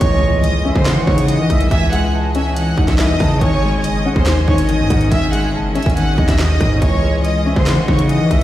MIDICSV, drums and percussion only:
0, 0, Header, 1, 2, 480
1, 0, Start_track
1, 0, Key_signature, 4, "minor"
1, 0, Tempo, 425532
1, 11, Time_signature, 4, 2, 24, 8
1, 9515, End_track
2, 0, Start_track
2, 0, Title_t, "Drums"
2, 11, Note_on_c, 9, 36, 112
2, 11, Note_on_c, 9, 42, 80
2, 124, Note_off_c, 9, 36, 0
2, 124, Note_off_c, 9, 42, 0
2, 493, Note_on_c, 9, 42, 78
2, 606, Note_off_c, 9, 42, 0
2, 852, Note_on_c, 9, 36, 103
2, 965, Note_off_c, 9, 36, 0
2, 967, Note_on_c, 9, 39, 94
2, 971, Note_on_c, 9, 38, 119
2, 973, Note_on_c, 9, 42, 79
2, 1080, Note_off_c, 9, 39, 0
2, 1084, Note_off_c, 9, 38, 0
2, 1086, Note_off_c, 9, 42, 0
2, 1211, Note_on_c, 9, 36, 94
2, 1324, Note_off_c, 9, 36, 0
2, 1329, Note_on_c, 9, 42, 98
2, 1442, Note_off_c, 9, 42, 0
2, 1449, Note_on_c, 9, 42, 81
2, 1561, Note_off_c, 9, 42, 0
2, 1691, Note_on_c, 9, 36, 106
2, 1692, Note_on_c, 9, 42, 86
2, 1804, Note_off_c, 9, 36, 0
2, 1805, Note_off_c, 9, 42, 0
2, 1811, Note_on_c, 9, 42, 76
2, 1924, Note_off_c, 9, 42, 0
2, 1931, Note_on_c, 9, 36, 112
2, 1932, Note_on_c, 9, 42, 79
2, 2044, Note_off_c, 9, 36, 0
2, 2044, Note_off_c, 9, 42, 0
2, 2174, Note_on_c, 9, 42, 88
2, 2287, Note_off_c, 9, 42, 0
2, 2648, Note_on_c, 9, 42, 72
2, 2761, Note_off_c, 9, 42, 0
2, 2893, Note_on_c, 9, 42, 80
2, 3006, Note_off_c, 9, 42, 0
2, 3131, Note_on_c, 9, 36, 96
2, 3243, Note_off_c, 9, 36, 0
2, 3249, Note_on_c, 9, 42, 93
2, 3251, Note_on_c, 9, 36, 101
2, 3251, Note_on_c, 9, 38, 71
2, 3362, Note_off_c, 9, 42, 0
2, 3364, Note_off_c, 9, 36, 0
2, 3364, Note_off_c, 9, 38, 0
2, 3367, Note_on_c, 9, 39, 95
2, 3371, Note_on_c, 9, 38, 116
2, 3479, Note_off_c, 9, 39, 0
2, 3484, Note_off_c, 9, 38, 0
2, 3611, Note_on_c, 9, 36, 107
2, 3611, Note_on_c, 9, 37, 101
2, 3611, Note_on_c, 9, 46, 62
2, 3724, Note_off_c, 9, 36, 0
2, 3724, Note_off_c, 9, 37, 0
2, 3724, Note_off_c, 9, 46, 0
2, 3851, Note_on_c, 9, 36, 108
2, 3851, Note_on_c, 9, 42, 77
2, 3964, Note_off_c, 9, 36, 0
2, 3964, Note_off_c, 9, 42, 0
2, 4332, Note_on_c, 9, 42, 75
2, 4445, Note_off_c, 9, 42, 0
2, 4692, Note_on_c, 9, 36, 105
2, 4804, Note_off_c, 9, 36, 0
2, 4806, Note_on_c, 9, 39, 92
2, 4811, Note_on_c, 9, 38, 119
2, 4812, Note_on_c, 9, 42, 76
2, 4919, Note_off_c, 9, 39, 0
2, 4923, Note_off_c, 9, 38, 0
2, 4925, Note_off_c, 9, 42, 0
2, 5051, Note_on_c, 9, 36, 95
2, 5163, Note_off_c, 9, 36, 0
2, 5168, Note_on_c, 9, 42, 96
2, 5281, Note_off_c, 9, 42, 0
2, 5288, Note_on_c, 9, 42, 81
2, 5401, Note_off_c, 9, 42, 0
2, 5531, Note_on_c, 9, 36, 104
2, 5531, Note_on_c, 9, 42, 85
2, 5644, Note_off_c, 9, 36, 0
2, 5644, Note_off_c, 9, 42, 0
2, 5650, Note_on_c, 9, 42, 72
2, 5762, Note_off_c, 9, 42, 0
2, 5770, Note_on_c, 9, 42, 79
2, 5771, Note_on_c, 9, 36, 110
2, 5883, Note_off_c, 9, 42, 0
2, 5884, Note_off_c, 9, 36, 0
2, 6013, Note_on_c, 9, 42, 88
2, 6125, Note_off_c, 9, 42, 0
2, 6491, Note_on_c, 9, 42, 62
2, 6572, Note_off_c, 9, 42, 0
2, 6572, Note_on_c, 9, 42, 60
2, 6612, Note_on_c, 9, 36, 108
2, 6651, Note_off_c, 9, 42, 0
2, 6651, Note_on_c, 9, 42, 61
2, 6724, Note_off_c, 9, 36, 0
2, 6733, Note_off_c, 9, 42, 0
2, 6733, Note_on_c, 9, 42, 87
2, 6846, Note_off_c, 9, 42, 0
2, 6971, Note_on_c, 9, 36, 95
2, 7084, Note_off_c, 9, 36, 0
2, 7089, Note_on_c, 9, 42, 92
2, 7091, Note_on_c, 9, 36, 97
2, 7091, Note_on_c, 9, 38, 73
2, 7202, Note_off_c, 9, 42, 0
2, 7204, Note_off_c, 9, 36, 0
2, 7204, Note_off_c, 9, 38, 0
2, 7207, Note_on_c, 9, 39, 94
2, 7211, Note_on_c, 9, 38, 121
2, 7319, Note_off_c, 9, 39, 0
2, 7324, Note_off_c, 9, 38, 0
2, 7451, Note_on_c, 9, 36, 102
2, 7452, Note_on_c, 9, 37, 99
2, 7452, Note_on_c, 9, 42, 83
2, 7564, Note_off_c, 9, 36, 0
2, 7565, Note_off_c, 9, 37, 0
2, 7565, Note_off_c, 9, 42, 0
2, 7691, Note_on_c, 9, 36, 108
2, 7691, Note_on_c, 9, 42, 79
2, 7804, Note_off_c, 9, 36, 0
2, 7804, Note_off_c, 9, 42, 0
2, 8173, Note_on_c, 9, 42, 77
2, 8286, Note_off_c, 9, 42, 0
2, 8532, Note_on_c, 9, 36, 104
2, 8645, Note_off_c, 9, 36, 0
2, 8647, Note_on_c, 9, 39, 94
2, 8651, Note_on_c, 9, 38, 115
2, 8653, Note_on_c, 9, 42, 77
2, 8759, Note_off_c, 9, 39, 0
2, 8764, Note_off_c, 9, 38, 0
2, 8766, Note_off_c, 9, 42, 0
2, 8891, Note_on_c, 9, 36, 94
2, 9004, Note_off_c, 9, 36, 0
2, 9010, Note_on_c, 9, 42, 93
2, 9122, Note_off_c, 9, 42, 0
2, 9129, Note_on_c, 9, 42, 79
2, 9242, Note_off_c, 9, 42, 0
2, 9371, Note_on_c, 9, 36, 108
2, 9372, Note_on_c, 9, 42, 80
2, 9484, Note_off_c, 9, 36, 0
2, 9485, Note_off_c, 9, 42, 0
2, 9515, End_track
0, 0, End_of_file